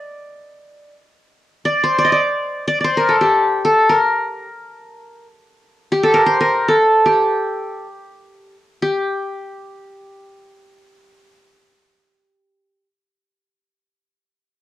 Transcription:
Already playing: D5
1.65 D5
1.84 C5
1.99 D5
2.05 D#5
2.12 D5
2.68 D5
2.81 C5 D5
2.97 A#4
3.09 A4
3.21 G4
3.65 A4
3.89 A#4
5.92 G4
6.03 A4
6.14 A#4
6.26 C5
6.41 A#4
6.68 A4
7.06 G4
8.82 G4

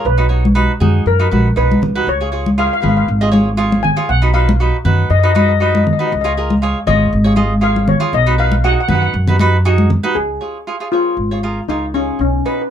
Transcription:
0.05 B1 B4
0.18 D#4 F#4 B4
0.29 D#4 F#4 C#5
0.45 high conga
0.55 D#4 F#4 B4
0.80 F#2 D#4 F#4 G#4, high conga, low conga
1.06 F#2 A#4
1.19 D#4 F#4 B4
1.31 A#1 D#4 F#4 B4, high conga
1.56 B1 D#4 F#4 B4
1.72 high conga
1.82 C#2, low conga
1.95 D#4 F#4 B4
2.07 C#2 C#5
2.21 F4 G#4 C#5
2.32 F4 G#4 C#5
2.46 high conga
2.58 F4 G#4 C#5 F5
2.67 F5
2.73 F5
2.81 G#1 F4 G#4 B4 F5, low conga
2.89 F5
2.97 F5
3.08 G#1
3.21 F4 G#4 D#5
3.32 F4 G#4 C#5, high conga
3.57 F4 G#4 C#5
3.72 high conga
3.83 G#5, low conga
3.96 F4 G#4 C#5
4.09 B1 F#5
4.22 D#4 F#4 B4
4.33 D#4 F#4 B4 F5
4.49 high conga
4.60 D#4 F#4 B4
4.85 F#2 D#4 F#4 B4, low conga
5.10 F#2 D#5
5.19 F#4 D#5
5.24 D#4 B4 D#5
5.33 D#4 F#4 B4 D#5, high conga
5.39 D#5
5.49 D#5
5.60 D#4 F#4 B4 D#5
5.70 D#5
5.75 D#5, high conga
5.84 D#5, low conga
5.93 D#5
5.99 D#4 F#4 B4 D#5
6.07 D#5
6.12 C#2 D#5
6.21 F4 G#4 C#5 D#5
6.37 F4 G#4 A#4
6.50 high conga
6.62 F4 G#4 C#5
6.87 G#1 F4 G#4 C#5 D#5, low conga
7.12 G#1
7.24 F4 G#4 C#5
7.36 F4 G#4 D#5, high conga
7.61 F4 G#4 C#5 F5
7.76 high conga
7.88 C#5, low conga
8.00 F4 G#4 C#5
8.13 B1 D#5
8.26 D#4 F#4 B4
8.38 D#4 F#4 B4 F5
8.52 high conga
8.64 D#4 F#4 G#4 F#5
8.73 F#5
8.81 F#5
8.88 F#2 D#4 F#4 B4 F#5, high conga, low conga
8.95 F#5
9.02 F#5
9.14 F#2
9.27 D#4 F#4 B4, low conga
9.39 D#4 F#4 B4, high conga
9.65 D#4 F#4 G#4
9.78 high conga
9.90 low conga
10.03 D#4 F#4 B4
10.15 C#2 G#4
10.41 F4 G#4 C#5
10.67 F4 G#4 C#5
10.80 F4 G#4 C#5
10.92 F4 G#4 C#5
11.17 G#1
11.31 F4 G#4 C#5
11.43 F4 G#4 A#4
11.68 C#2 D#4 F4 G#4 C#5
11.94 C#4 F4 G#4 C#5
12.19 B1 C#4
12.45 D#4 F#4 B4
12.54 B4
12.61 B4

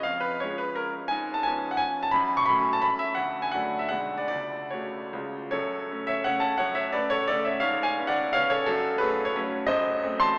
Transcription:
0.03 F2 F5
0.20 B4
0.40 F3 G#3 C#4 C#5
0.58 B4
0.76 A#4
1.08 G#2 G#5
1.34 A5
1.43 F3 B3 C#4 G#5
1.71 F#5
1.77 G#5
2.03 A5
2.11 F#2 B5
2.37 C#6
2.46 F#3 A3 C#4 B5
2.73 A5
2.82 B5
2.99 E5
3.15 D2 F#5
3.42 G#5
3.52 F#3 A3 D4 F#5
3.79 E5
3.89 B1 D3 G#3 D4 F#5
4.18 D5
4.28 C#2 D5
4.70 C#3 A3 F#4 C#5
5.13 C#2 C#3 G#3 F4
5.51 F#2 A4 C#5
5.91 A3 C#4
6.07 C#5 E5
6.24 C#3 A3 C#4 C#5 F#5
6.40 F#5 A5
6.58 F#2 C#5 F#5
6.75 C#5 E5
6.93 A3 C#4 B4 D5
7.10 A4 C#5
7.28 C#3 A3 C#4 A4 D5
7.45 C#5 E5
7.60 G#2 C#5 F5
7.83 F5 G#5
7.99 B3 C#4
8.07 D5 F#5
8.33 C#3 B3 C#4 C#5 F5
8.50 A4 C#5
8.66 F#2 F#4 A4
8.98 A3 C#4 G#4 B4
9.25 C#5
9.36 F#3 A3 C#4
9.67 F#2 C5 D#5
10.03 A3 C4
10.20 A5 C6

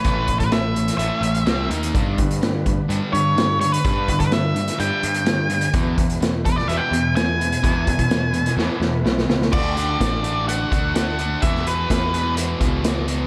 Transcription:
Already playing: A3 C#4 E4 B4 C#5
0.04 A1 A2 E3 A3 C#4, kick, closed hi-hat
0.28 A2 E3 A3, kick, closed hi-hat
0.40 B4, kick, closed hi-hat
0.51 A2 E3 A3 E5, snare, closed hi-hat
0.75 A2 E3 A3, closed hi-hat
0.88 snare, closed hi-hat
0.98 A1 A2 E3 A3 C#4 E5, closed hi-hat
1.21 A1 A2 E3 A3, closed hi-hat
1.35 closed hi-hat
1.45 C2 C3 G3 C4, snare, closed hi-hat
1.69 D#2 D#3 A#3 D#4, closed hi-hat
1.83 closed hi-hat
1.93 G2 D3 G3 B3 D4 B4, kick, closed hi-hat
2.18 G2 D3, kick, closed hi-hat
2.31 closed hi-hat
2.41 G2 D3, snare, closed hi-hat
2.66 G2 D3, kick, closed hi-hat
2.88 G2 D3 G3, closed hi-hat
3.12 G2 D3 C#5, closed hi-hat
3.36 G2 D3, snare, closed hi-hat
3.60 G2 D3 C#5, closed hi-hat
3.72 B4, closed hi-hat
3.84 G2 D3 G3, kick, closed hi-hat
4.08 G2 D3, kick, closed hi-hat
4.20 B4, kick, closed hi-hat
4.31 G2 D3 E5, snare, closed hi-hat
4.56 G2 D3, closed hi-hat
4.68 snare, closed hi-hat
4.79 G2 D3 G3 G5, closed hi-hat
5.03 G2 D3, closed hi-hat
5.14 closed hi-hat
5.25 G2 D3, snare, closed hi-hat
5.50 G2 D3, closed hi-hat
5.61 closed hi-hat
5.73 E2 B2 E3 G#3 B3 E4 B4, kick, closed hi-hat
5.97 E2 B2, kick, closed hi-hat
6.10 closed hi-hat
6.21 E2 B2, snare, closed hi-hat
6.45 E2 B2 B4, kick, closed hi-hat
6.56 D5, snare
6.67 E2 B2 E3 E5, closed hi-hat
6.77 G5
6.91 E2 B2, closed hi-hat
7.16 E2 B2 G#5, snare, closed hi-hat
7.40 E2 B2, closed hi-hat
7.52 closed hi-hat
7.62 E2 B2 E3, kick, closed hi-hat
7.86 E2 B2, kick, closed hi-hat
7.99 kick, closed hi-hat
8.09 E2 B2, snare, closed hi-hat
8.33 E2 B2, closed hi-hat
8.46 snare, closed hi-hat
8.57 E2 B2 E3, snare
8.80 E2 B2, snare
9.04 B1 E2 B2, snare
9.18 snare
9.29 C#2 E2 B2, snare
9.42 snare
9.52 D2 D3 A3 D4 F#4 D5, kick, crash
9.76 D3 A3 D4 F#4, closed hi-hat
9.99 A1 D3 A3 D4 F#4, kick, snare, closed hi-hat
10.23 D3 A3 D4 F#4, closed hi-hat
10.46 D3 A3 D4 F#4 F#5, closed hi-hat
10.70 D2 D3 A3 D4 F#4, kick, closed hi-hat
10.93 D3 A3 D4 F#4 F#5, snare, closed hi-hat
11.19 D3 A3 D4 F#4, closed hi-hat
11.42 E2 B2 E3 G#3 B3 G#4 E5, kick, closed hi-hat
11.55 snare
11.66 E2 B2 E3 G#3 B3 G#4 B4, closed hi-hat
11.89 E2 B2 E3 G#3 B3 G#4, kick, snare, closed hi-hat
12.12 E2 B2 E3 G#3 B3 G#4, closed hi-hat
12.36 E2 B2 E3 G#3 B3 G#4, closed hi-hat
12.59 C#2 E2 B2 E3 G#3 B3 G#4, kick, closed hi-hat
12.83 E2 B2 E3 G#3 B3 G#4, snare, closed hi-hat
13.06 E2 B2 E3 G#3 B3 G#4, closed hi-hat

